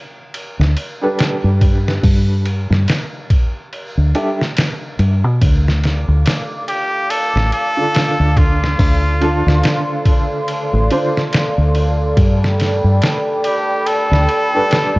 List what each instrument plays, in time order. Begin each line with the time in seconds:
0.34 ride
0.59 fingered electric bass D2, snare
0.77 ride
1.01 felt piano G3 D4 A4 B4
1.19 snare, ride
1.44 fingered electric bass G2
1.61 kick, ride
1.88 snare
2.03 fingered electric bass G2, kick, open hi-hat
2.46 ride
2.71 fingered electric bass G2, snare
2.88 snare, ride
3.30 kick, ride
3.73 ride
3.97 fingered electric bass D2
4.15 felt piano G3 D4 A4 E5, ride
4.41 snare
4.57 snare, ride
4.99 fingered electric bass G2, ride
5.24 fingered electric bass B2
5.41 fingered electric bass D2, analog synth pad A4 D5 F5 D6, kick, ride
5.68 snare
5.83 snare, ride
6.08 fingered electric bass D2
6.26 snare, ride
6.68 muted trumpet G4, ride
7.10 muted trumpet A4, ride
7.35 fingered electric bass A1, snare
7.52 muted trumpet A4, ride
7.77 felt piano D3 D4 F4 A4
7.95 snare, ride
8.20 fingered electric bass D2
8.37 muted trumpet F4, kick, ride
8.64 snare
8.79 fingered electric bass D2, analog synth pad C6, kick, open hi-hat
9.21 felt piano D3 D4 F4 A4, ride
9.47 fingered electric bass D2, snare
9.64 snare, ride
10.06 kick, ride
10.48 ride
10.73 fingered electric bass A1
10.90 felt piano D3 D4 F4 C5, ride
11.17 snare
11.33 snare, ride
11.58 fingered electric bass D2
11.75 ride
12.17 fingered electric bass G2, analog synth pad G5 B5, kick, ride
12.44 snare
12.60 snare, ride
12.84 fingered electric bass G2
13.02 snare, ride
13.44 muted trumpet G4, ride
13.87 muted trumpet A4, ride
14.11 fingered electric bass D2, snare
14.29 ride
14.53 felt piano G3 D4 A4 B4
14.71 snare, ride
14.96 fingered electric bass G2